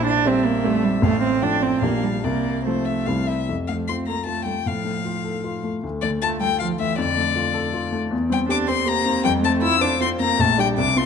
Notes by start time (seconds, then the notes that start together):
Already playing: A#1 C5
0.07 D4
0.25 G3 C4 G4 E5
0.45 A#3
0.64 G3 A3 C4 G4
0.84 G3
1.02 A1 A3 F5
1.23 C4
1.42 F3 C4 D4 A4 G5
1.62 C4
1.82 A#1 F3 A#3 D4 G4 F5
2.04 G3
2.24 C2 A#3 D5
2.65 F3 A3 C4 F4 C5
2.86 E5
3.06 C2 G3 C4 E4 F5
3.28 E5
3.49 F2
3.68 F3 A3 F5
3.88 C4 F4 C6
4.08 A#3 A4 A#5
4.27 A3 F4 A5
4.46 G3 A3 G5
4.66 A2 F3 F5
4.85 A3
5.05 F4
5.24 A4
5.44 F4
5.64 A3
5.83 D2
6.02 D3 A3 D5
6.22 A3 F4 A5
6.40 G3 A4 G5
6.60 F3 F4 F5
6.79 E3 A3 E5
6.98 F2 D3 D5
7.18 A3
7.36 F4
7.54 A4
7.74 F4
7.92 A3
8.11 E2
8.30 G3 C4 G5
8.49 D4 G4 D6
8.68 C4 C5 C6
8.86 A#3 G4 A#5
9.06 C4
9.24 F2 G3 G5
9.43 A3 C4 A5
9.61 E4 F4 E6
9.81 D4 C5 D6
10.00 C4 F4 C6
10.19 A#3 C4 A#5
10.39 A#1 A3 A5
10.58 G3 D4 G4 G5
10.78 C2 D4 D6
10.96 C4 F4 C6